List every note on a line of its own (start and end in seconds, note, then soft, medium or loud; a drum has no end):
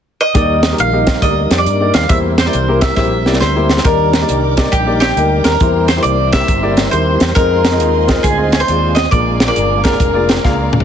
0.21 0.75 D#5 medium
0.34 0.72 D#2 loud
0.34 1.03 D#3 medium
0.34 2.07 G3 medium
0.34 0.59 A#3 medium
0.34 2.07 A#3 medium
0.34 0.59 D#4 medium
0.34 2.07 D#4 medium
0.34 0.59 G4 medium
0.34 2.07 A#4 medium
0.34 0.59 D5 medium
0.34 kick loud
0.34 closed hi-hat medium
0.63 snare loud
0.63 closed hi-hat medium
0.71 0.80 A#3 medium
0.71 0.80 D#4 medium
0.71 0.81 G4 medium
0.71 0.81 A#4 medium
0.78 1.16 A#1 medium
0.78 1.24 F5 medium
0.78 closed hi-hat medium
0.92 1.12 A#3 medium
0.92 1.12 D#4 medium
0.92 1.13 G4 medium
0.92 1.13 D#5 medium
1.07 kick medium
1.07 snare loud
1.07 closed hi-hat medium
1.22 1.47 D2 medium
1.22 1.38 A#3 medium
1.22 1.38 D#4 medium
1.22 1.39 G4 medium
1.22 1.39 D5 medium
1.22 1.58 D#5 medium
1.22 kick loud
1.22 closed hi-hat medium
1.50 1.64 F2 medium
1.50 1.63 A#3 medium
1.50 1.63 D#4 medium
1.50 1.64 G4 medium
1.50 1.64 D5 medium
1.50 snare loud
1.50 closed hi-hat medium
1.58 1.92 D5 medium
1.66 1.90 G2 medium
1.66 closed hi-hat medium
1.80 2.00 A#3 medium
1.80 2.00 D#4 medium
1.80 2.00 G4 medium
1.80 2.00 D5 medium
1.94 2.07 D#2 medium
1.94 2.09 F5 medium
1.94 snare loud
1.94 closed hi-hat medium
2.09 2.47 E2 loud
2.09 2.78 E3 medium
2.09 3.81 G3 medium
2.09 2.33 A#3 medium
2.09 3.81 C4 medium
2.09 3.81 E4 medium
2.09 2.34 E4 medium
2.09 2.34 G4 medium
2.09 2.34 C5 medium
2.09 2.17 E5 medium
2.09 kick medium
2.09 closed hi-hat medium
2.38 2.79 C5 medium
2.38 snare loud
2.38 closed hi-hat medium
2.45 2.55 A#3 medium
2.45 2.55 E4 medium
2.45 2.56 G4 medium
2.45 2.56 D5 medium
2.53 2.91 C2 medium
2.53 closed hi-hat medium
2.68 2.87 A#3 medium
2.68 2.88 E4 medium
2.68 2.88 G4 medium
2.68 2.88 A#4 medium
2.81 2.95 E5 medium
2.81 kick medium
2.81 snare medium
2.81 closed hi-hat medium
2.96 3.26 A#1 medium
2.96 3.13 A#3 medium
2.96 3.13 E4 medium
2.96 3.13 G4 medium
2.96 3.13 C5 medium
2.96 3.66 E5 medium
2.96 kick loud
2.96 snare soft
3.25 3.39 C2 medium
3.25 3.39 A#3 medium
3.25 3.39 E4 medium
3.25 3.39 G4 medium
3.25 3.39 D5 medium
3.25 snare medium
3.33 snare medium
3.40 3.79 D2 medium
3.40 3.84 C5 medium
3.40 snare medium
3.55 3.75 A#3 medium
3.55 3.75 E4 medium
3.55 3.75 G4 medium
3.55 3.75 C5 medium
3.69 snare medium
3.77 snare medium
3.84 4.22 D#2 loud
3.84 4.54 D#3 medium
3.84 5.57 G3 medium
3.84 4.09 A#3 medium
3.84 5.57 D4 medium
3.84 4.09 D#4 medium
3.84 5.57 D#4 soft
3.84 4.09 G4 medium
3.84 4.75 A#4 medium
3.84 5.57 A#4 medium
3.84 5.59 D5 medium
3.84 4.09 D5 medium
3.84 7.32 G5 medium
3.84 7.32 A#5 medium
3.84 5.58 D6 medium
3.84 kick medium
3.84 closed hi-hat medium
4.13 snare loud
4.13 closed hi-hat medium
4.21 4.39 A#3 medium
4.21 4.39 D#4 medium
4.21 4.39 G4 medium
4.21 4.39 D5 medium
4.29 4.67 C2 medium
4.29 closed hi-hat medium
4.57 4.70 A#3 medium
4.57 4.70 D#4 medium
4.57 4.71 G4 medium
4.57 4.71 D5 medium
4.57 kick medium
4.57 snare loud
4.57 closed hi-hat medium
4.72 5.10 A#1 medium
4.72 4.99 G4 medium
4.72 kick loud
4.72 closed hi-hat medium
4.86 5.06 A#3 medium
4.86 5.06 D#4 medium
4.86 5.07 G4 medium
4.86 5.07 D5 medium
5.00 5.42 G4 medium
5.00 snare loud
5.00 closed hi-hat medium
5.16 5.41 D2 medium
5.16 5.47 A#3 medium
5.16 5.47 D#4 medium
5.16 5.48 G4 medium
5.16 5.48 A#4 medium
5.16 closed hi-hat medium
5.44 5.58 D#2 medium
5.44 5.88 A#4 medium
5.44 snare loud
5.44 closed hi-hat medium
5.60 5.98 E2 loud
5.60 6.30 E3 medium
5.60 7.33 G3 medium
5.60 5.85 A#3 medium
5.60 7.33 C4 medium
5.60 5.85 E4 medium
5.60 7.33 E4 medium
5.60 5.85 G4 medium
5.60 5.68 G#4 medium
5.60 5.85 C5 medium
5.60 7.35 E5 medium
5.60 9.09 C6 medium
5.60 kick loud
5.60 closed hi-hat medium
5.67 7.36 A#4 medium
5.88 6.02 C5 medium
5.88 snare loud
5.88 closed hi-hat medium
5.97 6.14 A#3 medium
5.97 6.14 E4 medium
5.97 6.15 G4 medium
5.97 6.15 C5 medium
6.03 6.42 C2 medium
6.03 6.32 D5 medium
6.03 closed hi-hat medium
6.32 6.46 A#3 medium
6.32 6.46 E4 medium
6.32 6.46 G4 medium
6.32 6.47 A#4 medium
6.32 6.91 E5 medium
6.32 kick medium
6.32 snare loud
6.32 closed hi-hat medium
6.48 6.86 G1 medium
6.48 kick loud
6.48 closed hi-hat medium
6.62 6.82 A#3 medium
6.62 6.82 E4 medium
6.62 6.82 G4 medium
6.62 6.83 D5 medium
6.77 snare loud
6.77 closed hi-hat medium
6.91 7.17 D#2 medium
6.91 7.23 A#3 medium
6.91 7.23 E4 medium
6.91 7.23 G4 medium
6.91 7.35 C5 medium
6.91 7.23 C5 medium
6.91 closed hi-hat medium
7.20 7.34 E2 medium
7.20 snare loud
7.20 closed hi-hat medium
7.35 7.80 F2 loud
7.35 9.08 G#3 medium
7.35 7.60 C4 medium
7.35 9.08 D#4 medium
7.35 7.60 F4 medium
7.35 9.08 F4 medium
7.35 7.60 G#4 medium
7.35 8.26 A#4 loud
7.35 9.08 C5 medium
7.35 9.10 D#5 medium
7.35 7.60 D#5 medium
7.35 10.84 F5 medium
7.35 10.84 G#5 medium
7.35 kick loud
7.35 closed hi-hat medium
7.65 snare loud
7.65 closed hi-hat medium
7.71 7.89 C4 medium
7.71 7.90 F4 medium
7.71 7.90 G#4 medium
7.71 7.90 D#5 medium
7.80 8.18 D#2 medium
7.80 closed hi-hat medium
8.07 8.21 C4 medium
8.07 8.21 F4 medium
8.07 8.21 G#4 medium
8.07 8.22 D#5 medium
8.07 kick medium
8.07 snare loud
8.07 closed hi-hat medium
8.23 8.62 D2 medium
8.23 8.50 G#4 medium
8.23 kick loud
8.23 closed hi-hat medium
8.37 8.57 C4 medium
8.37 8.58 F4 medium
8.37 8.58 G#4 medium
8.37 8.58 D#5 medium
8.52 8.61 G#4 medium
8.52 snare loud
8.52 closed hi-hat medium
8.60 8.94 C5 medium
8.67 9.06 D#2 medium
8.67 8.98 C4 medium
8.67 8.98 F4 medium
8.67 8.98 G#4 medium
8.67 8.99 D5 medium
8.67 closed hi-hat medium
8.95 9.11 D#5 medium
8.95 snare loud
8.95 closed hi-hat medium
9.11 9.49 A#1 loud
9.11 9.80 A#2 medium
9.11 10.84 G#3 medium
9.11 9.35 A#3 medium
9.11 10.84 D4 medium
9.11 9.36 F4 medium
9.11 10.84 F4 medium
9.11 9.36 G#4 medium
9.11 10.84 A#4 medium
9.11 9.45 D5 medium
9.11 9.36 D5 medium
9.11 10.84 D5 medium
9.11 10.84 A#5 medium
9.11 kick loud
9.11 closed hi-hat medium
9.40 snare loud
9.40 closed hi-hat medium
9.47 9.65 A#3 medium
9.47 9.65 F4 medium
9.47 9.65 G#4 medium
9.47 9.66 A#4 medium
9.47 9.83 D5 medium
9.56 9.94 G1 medium
9.56 closed hi-hat medium
9.84 9.97 A#3 medium
9.84 9.97 F4 soft
9.84 9.98 G#4 medium
9.84 10.68 A#4 medium
9.84 9.98 D5 medium
9.84 kick medium
9.84 snare loud
9.84 closed hi-hat medium
10.00 10.37 F1 medium
10.00 kick loud
10.00 closed hi-hat medium
10.13 10.33 A#3 medium
10.13 10.34 F4 medium
10.13 10.34 G#4 medium
10.13 10.34 D5 medium
10.29 snare loud
10.29 closed hi-hat medium
10.44 10.69 C#2 medium
10.44 10.74 A#3 medium
10.44 10.75 F4 medium
10.44 10.75 G#4 medium
10.44 10.75 F5 medium
10.44 kick medium
10.44 snare soft
10.73 10.84 D2 medium
10.73 mid tom medium
10.80 floor tom medium